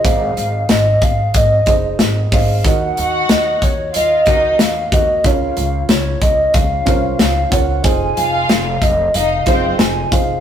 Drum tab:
HH |xxxxxxxo|xxxxxxxx|xxxxxxxx|xxxxxxxx|
SD |--o---oo|--o---o-|--o---o-|--o---o-|
BD |o--ooo-o|o--o-o-o|o--ooo-o|o--o-o-o|